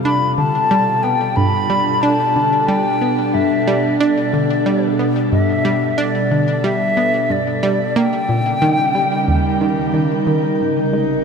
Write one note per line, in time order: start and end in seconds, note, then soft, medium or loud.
0.00 7.96 G3 medium
0.00 2.32 F4 medium
0.00 7.96 A4 medium
0.04 7.96 B2 medium
0.04 0.15 D4 loud
0.04 0.35 B5 loud
0.37 0.55 D3 medium
0.37 1.04 A5 loud
0.71 0.96 G3 loud
1.03 1.21 B3 medium
1.03 1.38 G5 medium
1.23 7.96 D4 medium
1.36 1.47 G2 medium
1.36 2.03 B5 loud
1.70 1.80 G3 loud
2.02 2.13 D4 loud
2.02 2.69 A5 loud
2.36 2.53 D3 medium
2.68 2.94 G3 medium
2.68 3.35 G5 loud
3.02 3.19 B3 medium
3.34 3.45 G2 medium
3.34 3.99 E5 medium
3.67 3.78 G3 loud
4.00 4.11 D4 loud
4.00 4.95 D5 medium
4.33 4.50 D3 medium
4.66 4.92 G3 medium
4.99 5.16 B3 medium
5.32 5.42 G2 medium
5.32 6.00 E5 medium
5.65 5.75 G3 loud
5.98 6.08 D4 loud
5.98 6.66 D5 medium
6.31 6.48 D3 medium
6.64 6.89 G3 medium
6.64 7.33 E5 loud
6.97 7.14 B3 medium
7.30 7.40 G2 medium
7.30 7.98 D5 medium
7.63 7.73 G3 loud
7.96 10.60 C#3 medium
7.96 8.06 A#3 loud
7.96 9.94 G5 loud
8.29 8.46 A#2 medium
8.29 11.24 D#4 medium
8.38 10.60 G3 medium
8.62 8.87 D#3 loud
8.95 9.12 G3 medium
9.15 11.24 A#4 medium
9.28 9.38 D#2 medium
9.61 9.86 D#3 medium
9.94 10.04 D#3 medium
10.27 10.52 D#3 medium
10.60 11.24 G#1 medium
10.60 10.70 G#2 medium
10.60 11.24 C3 medium
10.93 11.03 G#3 medium